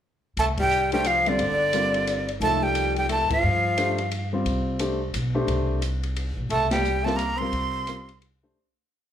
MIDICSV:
0, 0, Header, 1, 7, 480
1, 0, Start_track
1, 0, Tempo, 341297
1, 519, Time_signature, 3, 2, 24, 8
1, 12826, End_track
2, 0, Start_track
2, 0, Title_t, "Flute"
2, 0, Program_c, 0, 73
2, 548, Note_on_c, 0, 81, 99
2, 632, Note_off_c, 0, 81, 0
2, 849, Note_on_c, 0, 79, 89
2, 1281, Note_off_c, 0, 79, 0
2, 1311, Note_on_c, 0, 79, 81
2, 1502, Note_on_c, 0, 77, 86
2, 1523, Note_off_c, 0, 79, 0
2, 1803, Note_on_c, 0, 74, 88
2, 1824, Note_off_c, 0, 77, 0
2, 3230, Note_off_c, 0, 74, 0
2, 3407, Note_on_c, 0, 81, 100
2, 3696, Note_on_c, 0, 79, 91
2, 3717, Note_off_c, 0, 81, 0
2, 4176, Note_off_c, 0, 79, 0
2, 4184, Note_on_c, 0, 79, 82
2, 4350, Note_off_c, 0, 79, 0
2, 4376, Note_on_c, 0, 81, 83
2, 4644, Note_off_c, 0, 81, 0
2, 4675, Note_on_c, 0, 77, 80
2, 6045, Note_off_c, 0, 77, 0
2, 9157, Note_on_c, 0, 81, 84
2, 9430, Note_off_c, 0, 81, 0
2, 9438, Note_on_c, 0, 79, 79
2, 9909, Note_on_c, 0, 81, 87
2, 9931, Note_off_c, 0, 79, 0
2, 10073, Note_on_c, 0, 82, 86
2, 10094, Note_off_c, 0, 81, 0
2, 10381, Note_on_c, 0, 84, 99
2, 10402, Note_off_c, 0, 82, 0
2, 11540, Note_off_c, 0, 84, 0
2, 12826, End_track
3, 0, Start_track
3, 0, Title_t, "Grand piano"
3, 0, Program_c, 1, 0
3, 1303, Note_on_c, 1, 57, 67
3, 1305, Note_on_c, 1, 62, 58
3, 1307, Note_on_c, 1, 67, 56
3, 1313, Note_on_c, 1, 72, 76
3, 1465, Note_off_c, 1, 57, 0
3, 1466, Note_off_c, 1, 62, 0
3, 1467, Note_off_c, 1, 67, 0
3, 1470, Note_off_c, 1, 72, 0
3, 1785, Note_on_c, 1, 55, 64
3, 1793, Note_on_c, 1, 60, 52
3, 1793, Note_on_c, 1, 65, 56
3, 1794, Note_on_c, 1, 72, 68
3, 1946, Note_off_c, 1, 55, 0
3, 1950, Note_off_c, 1, 60, 0
3, 1950, Note_off_c, 1, 65, 0
3, 1951, Note_off_c, 1, 72, 0
3, 2439, Note_on_c, 1, 55, 56
3, 2445, Note_on_c, 1, 60, 51
3, 2445, Note_on_c, 1, 65, 51
3, 2449, Note_on_c, 1, 70, 59
3, 3157, Note_off_c, 1, 55, 0
3, 3160, Note_off_c, 1, 60, 0
3, 3160, Note_off_c, 1, 65, 0
3, 3162, Note_off_c, 1, 70, 0
3, 3392, Note_on_c, 1, 53, 51
3, 3403, Note_on_c, 1, 63, 41
3, 3408, Note_on_c, 1, 58, 44
3, 3409, Note_on_c, 1, 69, 55
3, 4724, Note_off_c, 1, 53, 0
3, 4730, Note_off_c, 1, 63, 0
3, 4732, Note_off_c, 1, 58, 0
3, 4733, Note_off_c, 1, 69, 0
3, 5306, Note_on_c, 1, 57, 53
3, 5314, Note_on_c, 1, 62, 51
3, 5315, Note_on_c, 1, 72, 62
3, 5319, Note_on_c, 1, 67, 49
3, 5578, Note_off_c, 1, 57, 0
3, 5582, Note_off_c, 1, 62, 0
3, 5583, Note_off_c, 1, 72, 0
3, 5585, Note_off_c, 1, 67, 0
3, 6086, Note_on_c, 1, 55, 55
3, 6094, Note_on_c, 1, 60, 53
3, 6096, Note_on_c, 1, 72, 60
3, 6101, Note_on_c, 1, 65, 54
3, 6714, Note_off_c, 1, 55, 0
3, 6717, Note_off_c, 1, 60, 0
3, 6719, Note_off_c, 1, 72, 0
3, 6721, Note_off_c, 1, 65, 0
3, 6745, Note_on_c, 1, 57, 50
3, 6749, Note_on_c, 1, 62, 50
3, 6753, Note_on_c, 1, 67, 51
3, 6754, Note_on_c, 1, 72, 59
3, 7016, Note_off_c, 1, 57, 0
3, 7018, Note_off_c, 1, 62, 0
3, 7020, Note_off_c, 1, 67, 0
3, 7020, Note_off_c, 1, 72, 0
3, 7518, Note_on_c, 1, 57, 66
3, 7521, Note_on_c, 1, 62, 60
3, 7521, Note_on_c, 1, 67, 63
3, 7528, Note_on_c, 1, 72, 75
3, 8148, Note_off_c, 1, 57, 0
3, 8150, Note_off_c, 1, 62, 0
3, 8150, Note_off_c, 1, 67, 0
3, 8153, Note_off_c, 1, 72, 0
3, 9931, Note_on_c, 1, 55, 69
3, 9936, Note_on_c, 1, 60, 62
3, 9944, Note_on_c, 1, 70, 76
3, 9945, Note_on_c, 1, 65, 64
3, 10094, Note_off_c, 1, 55, 0
3, 10096, Note_off_c, 1, 60, 0
3, 10100, Note_off_c, 1, 70, 0
3, 10101, Note_off_c, 1, 65, 0
3, 10413, Note_on_c, 1, 55, 65
3, 10418, Note_on_c, 1, 60, 58
3, 10421, Note_on_c, 1, 65, 61
3, 10427, Note_on_c, 1, 70, 77
3, 11037, Note_off_c, 1, 55, 0
3, 11040, Note_off_c, 1, 60, 0
3, 11042, Note_off_c, 1, 65, 0
3, 11045, Note_off_c, 1, 70, 0
3, 11075, Note_on_c, 1, 60, 56
3, 11081, Note_on_c, 1, 55, 59
3, 11086, Note_on_c, 1, 65, 55
3, 11089, Note_on_c, 1, 70, 71
3, 11341, Note_off_c, 1, 60, 0
3, 11344, Note_off_c, 1, 55, 0
3, 11347, Note_off_c, 1, 65, 0
3, 11348, Note_off_c, 1, 70, 0
3, 11856, Note_on_c, 1, 57, 55
3, 11857, Note_on_c, 1, 67, 50
3, 11858, Note_on_c, 1, 62, 54
3, 11868, Note_on_c, 1, 72, 66
3, 12037, Note_off_c, 1, 57, 0
3, 12037, Note_off_c, 1, 67, 0
3, 12038, Note_off_c, 1, 62, 0
3, 12043, Note_off_c, 1, 72, 0
3, 12826, End_track
4, 0, Start_track
4, 0, Title_t, "Tenor saxophone"
4, 0, Program_c, 2, 66
4, 558, Note_on_c, 2, 57, 84
4, 683, Note_off_c, 2, 57, 0
4, 833, Note_on_c, 2, 55, 79
4, 1272, Note_off_c, 2, 55, 0
4, 1310, Note_on_c, 2, 55, 78
4, 1488, Note_on_c, 2, 53, 75
4, 1509, Note_off_c, 2, 55, 0
4, 1790, Note_on_c, 2, 50, 80
4, 1811, Note_off_c, 2, 53, 0
4, 3224, Note_off_c, 2, 50, 0
4, 3405, Note_on_c, 2, 57, 83
4, 3698, Note_on_c, 2, 55, 75
4, 3719, Note_off_c, 2, 57, 0
4, 4177, Note_off_c, 2, 55, 0
4, 4187, Note_on_c, 2, 55, 66
4, 4336, Note_off_c, 2, 55, 0
4, 4344, Note_on_c, 2, 57, 75
4, 4627, Note_off_c, 2, 57, 0
4, 4637, Note_on_c, 2, 53, 71
4, 6026, Note_off_c, 2, 53, 0
4, 9154, Note_on_c, 2, 57, 77
4, 9428, Note_off_c, 2, 57, 0
4, 9440, Note_on_c, 2, 55, 68
4, 9886, Note_on_c, 2, 57, 73
4, 9908, Note_off_c, 2, 55, 0
4, 10075, Note_on_c, 2, 58, 83
4, 10097, Note_off_c, 2, 57, 0
4, 10356, Note_on_c, 2, 60, 83
4, 10377, Note_off_c, 2, 58, 0
4, 11527, Note_off_c, 2, 60, 0
4, 12826, End_track
5, 0, Start_track
5, 0, Title_t, "Upright bass"
5, 0, Program_c, 3, 32
5, 516, Note_on_c, 3, 36, 74
5, 1903, Note_off_c, 3, 36, 0
5, 1952, Note_on_c, 3, 31, 79
5, 3339, Note_off_c, 3, 31, 0
5, 3381, Note_on_c, 3, 36, 84
5, 4589, Note_off_c, 3, 36, 0
5, 4829, Note_on_c, 3, 43, 76
5, 6213, Note_off_c, 3, 43, 0
5, 6262, Note_on_c, 3, 36, 74
5, 7169, Note_off_c, 3, 36, 0
5, 7226, Note_on_c, 3, 35, 74
5, 7674, Note_off_c, 3, 35, 0
5, 7696, Note_on_c, 3, 36, 82
5, 8903, Note_off_c, 3, 36, 0
5, 8957, Note_on_c, 3, 35, 65
5, 9124, Note_off_c, 3, 35, 0
5, 9133, Note_on_c, 3, 36, 78
5, 10526, Note_off_c, 3, 36, 0
5, 10579, Note_on_c, 3, 36, 77
5, 11972, Note_off_c, 3, 36, 0
5, 12826, End_track
6, 0, Start_track
6, 0, Title_t, "Muted upright bass strokes"
6, 4640, Note_on_c, 9, 29, 36
6, 4780, Note_off_c, 9, 29, 0
6, 12826, End_track
7, 0, Start_track
7, 0, Title_t, "Drums"
7, 521, Note_on_c, 9, 51, 50
7, 661, Note_off_c, 9, 51, 0
7, 810, Note_on_c, 9, 51, 64
7, 811, Note_on_c, 9, 36, 74
7, 951, Note_off_c, 9, 51, 0
7, 952, Note_off_c, 9, 36, 0
7, 993, Note_on_c, 9, 44, 54
7, 1134, Note_off_c, 9, 44, 0
7, 1293, Note_on_c, 9, 51, 43
7, 1434, Note_off_c, 9, 51, 0
7, 1469, Note_on_c, 9, 44, 50
7, 1469, Note_on_c, 9, 51, 61
7, 1610, Note_off_c, 9, 44, 0
7, 1610, Note_off_c, 9, 51, 0
7, 1774, Note_on_c, 9, 51, 41
7, 1915, Note_off_c, 9, 51, 0
7, 1952, Note_on_c, 9, 51, 54
7, 2093, Note_off_c, 9, 51, 0
7, 2431, Note_on_c, 9, 44, 57
7, 2431, Note_on_c, 9, 51, 65
7, 2571, Note_off_c, 9, 44, 0
7, 2571, Note_off_c, 9, 51, 0
7, 2730, Note_on_c, 9, 51, 43
7, 2870, Note_off_c, 9, 51, 0
7, 2915, Note_on_c, 9, 44, 52
7, 2915, Note_on_c, 9, 51, 60
7, 3056, Note_off_c, 9, 44, 0
7, 3056, Note_off_c, 9, 51, 0
7, 3213, Note_on_c, 9, 51, 41
7, 3354, Note_off_c, 9, 51, 0
7, 3397, Note_on_c, 9, 51, 52
7, 3537, Note_off_c, 9, 51, 0
7, 3867, Note_on_c, 9, 44, 45
7, 3867, Note_on_c, 9, 51, 63
7, 4008, Note_off_c, 9, 44, 0
7, 4008, Note_off_c, 9, 51, 0
7, 4167, Note_on_c, 9, 51, 40
7, 4308, Note_off_c, 9, 51, 0
7, 4349, Note_on_c, 9, 44, 46
7, 4349, Note_on_c, 9, 51, 61
7, 4490, Note_off_c, 9, 44, 0
7, 4490, Note_off_c, 9, 51, 0
7, 4644, Note_on_c, 9, 36, 77
7, 4647, Note_on_c, 9, 51, 67
7, 4785, Note_off_c, 9, 36, 0
7, 4788, Note_off_c, 9, 51, 0
7, 5309, Note_on_c, 9, 44, 51
7, 5309, Note_on_c, 9, 51, 63
7, 5450, Note_off_c, 9, 44, 0
7, 5450, Note_off_c, 9, 51, 0
7, 5602, Note_on_c, 9, 51, 41
7, 5743, Note_off_c, 9, 51, 0
7, 5787, Note_on_c, 9, 51, 54
7, 5927, Note_off_c, 9, 51, 0
7, 6270, Note_on_c, 9, 51, 53
7, 6411, Note_off_c, 9, 51, 0
7, 6741, Note_on_c, 9, 44, 56
7, 6741, Note_on_c, 9, 51, 61
7, 6882, Note_off_c, 9, 44, 0
7, 6882, Note_off_c, 9, 51, 0
7, 7227, Note_on_c, 9, 44, 49
7, 7227, Note_on_c, 9, 51, 65
7, 7368, Note_off_c, 9, 44, 0
7, 7368, Note_off_c, 9, 51, 0
7, 7708, Note_on_c, 9, 51, 55
7, 7849, Note_off_c, 9, 51, 0
7, 8184, Note_on_c, 9, 44, 53
7, 8184, Note_on_c, 9, 51, 62
7, 8325, Note_off_c, 9, 44, 0
7, 8325, Note_off_c, 9, 51, 0
7, 8486, Note_on_c, 9, 51, 43
7, 8627, Note_off_c, 9, 51, 0
7, 8669, Note_on_c, 9, 51, 54
7, 8810, Note_off_c, 9, 51, 0
7, 9145, Note_on_c, 9, 51, 51
7, 9286, Note_off_c, 9, 51, 0
7, 9438, Note_on_c, 9, 38, 70
7, 9440, Note_on_c, 9, 51, 58
7, 9579, Note_off_c, 9, 38, 0
7, 9580, Note_off_c, 9, 51, 0
7, 9627, Note_on_c, 9, 44, 52
7, 9768, Note_off_c, 9, 44, 0
7, 9928, Note_on_c, 9, 38, 54
7, 10069, Note_off_c, 9, 38, 0
7, 10105, Note_on_c, 9, 44, 57
7, 10105, Note_on_c, 9, 51, 65
7, 10246, Note_off_c, 9, 44, 0
7, 10246, Note_off_c, 9, 51, 0
7, 10585, Note_on_c, 9, 51, 54
7, 10725, Note_off_c, 9, 51, 0
7, 11068, Note_on_c, 9, 44, 58
7, 11068, Note_on_c, 9, 51, 61
7, 11208, Note_off_c, 9, 44, 0
7, 11208, Note_off_c, 9, 51, 0
7, 11372, Note_on_c, 9, 51, 43
7, 11513, Note_off_c, 9, 51, 0
7, 11556, Note_on_c, 9, 51, 51
7, 11697, Note_off_c, 9, 51, 0
7, 12826, End_track
0, 0, End_of_file